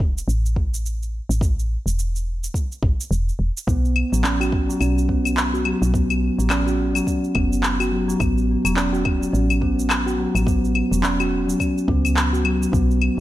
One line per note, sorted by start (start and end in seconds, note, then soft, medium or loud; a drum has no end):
0.00 0.22 E1 medium
0.00 kick loud
0.18 cabasa medium
0.28 1.21 A1 medium
0.28 cabasa soft
0.46 cabasa soft
0.56 kick medium
0.74 cabasa medium
0.86 cabasa medium
1.03 cabasa soft
1.29 1.77 A1 medium
1.29 cabasa medium
1.41 kick loud
1.41 cabasa medium
1.59 cabasa soft
1.86 2.48 E1 medium
1.86 cabasa medium
1.99 cabasa medium
2.16 cabasa soft
2.44 cabasa medium
2.54 kick medium
2.54 cabasa medium
2.72 cabasa soft
2.83 2.94 A1 medium
2.83 kick loud
3.00 cabasa medium
3.11 3.32 E1 loud
3.11 cabasa soft
3.29 cabasa soft
3.39 3.50 E1 medium
3.57 cabasa medium
3.67 4.04 B1 medium
3.67 3.83 B3 medium
3.67 kick loud
3.67 cabasa soft
3.85 cabasa soft
3.96 claves medium
4.12 4.75 A1 medium
4.12 4.23 F#3 medium
4.12 cabasa medium
4.24 4.40 C#4 medium
4.24 clap medium
4.24 cabasa soft
4.40 4.67 F#4 medium
4.40 cabasa soft
4.40 claves medium
4.52 kick medium
4.69 4.80 F#3 medium
4.69 cabasa medium
4.81 5.74 B1 medium
4.81 4.97 C#4 medium
4.81 cabasa medium
4.81 claves medium
4.98 cabasa soft
5.09 5.18 B3 medium
5.09 kick medium
5.25 cabasa medium
5.25 claves medium
5.37 clap medium
5.37 cabasa soft
5.54 5.64 F#4 medium
5.54 cabasa soft
5.65 5.80 F#3 medium
5.65 claves medium
5.82 6.30 B1 medium
5.82 5.93 F#3 medium
5.82 cabasa medium
5.94 6.10 B3 medium
5.94 kick loud
5.94 cabasa soft
6.10 cabasa soft
6.10 claves medium
6.39 7.01 A1 medium
6.39 6.50 F#3 medium
6.39 cabasa medium
6.50 6.66 C#4 medium
6.50 clap medium
6.50 cabasa soft
6.50 claves medium
6.67 6.94 F#4 medium
6.67 cabasa soft
6.95 7.06 F#3 medium
6.95 cabasa medium
6.95 claves medium
7.07 7.23 C#4 medium
7.07 kick medium
7.07 cabasa soft
7.24 cabasa soft
7.35 8.14 F#1 medium
7.35 7.45 B3 medium
7.35 kick medium
7.35 claves medium
7.53 cabasa medium
7.63 clap medium
7.63 cabasa soft
7.80 7.91 F#4 medium
7.80 cabasa soft
7.80 claves medium
7.92 8.07 F#3 medium
8.08 8.19 F#3 medium
8.08 cabasa medium
8.20 8.57 A1 loud
8.20 8.36 B3 medium
8.20 kick medium
8.20 cabasa soft
8.20 claves medium
8.38 cabasa soft
8.65 9.27 E1 medium
8.65 8.76 F#3 medium
8.65 cabasa medium
8.65 claves medium
8.76 8.92 C#4 medium
8.76 clap medium
8.76 cabasa soft
8.93 9.20 F#4 medium
8.93 cabasa soft
9.05 kick medium
9.05 claves medium
9.21 9.32 F#3 medium
9.21 cabasa medium
9.33 10.26 A1 medium
9.33 9.49 C#4 medium
9.33 cabasa soft
9.50 cabasa soft
9.50 claves medium
9.61 9.71 B3 medium
9.61 kick medium
9.79 cabasa medium
9.90 clap medium
9.90 cabasa soft
9.90 claves medium
10.06 10.17 F#4 medium
10.06 cabasa soft
10.18 10.33 F#3 medium
10.35 10.83 A1 medium
10.35 10.46 F#3 medium
10.35 cabasa medium
10.35 claves medium
10.46 10.62 B3 medium
10.46 kick loud
10.46 cabasa soft
10.65 cabasa soft
10.75 claves medium
10.91 11.54 E1 medium
10.91 11.03 F#3 medium
10.91 cabasa medium
11.03 11.19 C#4 medium
11.03 clap medium
11.03 cabasa medium
11.20 11.47 F#4 medium
11.20 cabasa soft
11.20 claves medium
11.48 11.59 F#3 medium
11.48 cabasa medium
11.60 11.76 C#4 medium
11.60 kick medium
11.60 cabasa soft
11.60 claves medium
11.78 cabasa soft
11.88 12.67 C#2 loud
11.88 11.98 B3 medium
11.88 kick medium
12.05 cabasa medium
12.05 claves medium
12.17 clap medium
12.17 cabasa soft
12.33 12.43 F#4 medium
12.33 cabasa soft
12.44 12.60 F#3 medium
12.44 claves medium
12.61 12.72 F#3 medium
12.61 cabasa medium
12.72 13.10 B1 medium
12.72 12.89 B3 medium
12.72 kick loud
12.72 cabasa soft
12.91 cabasa soft
13.02 claves medium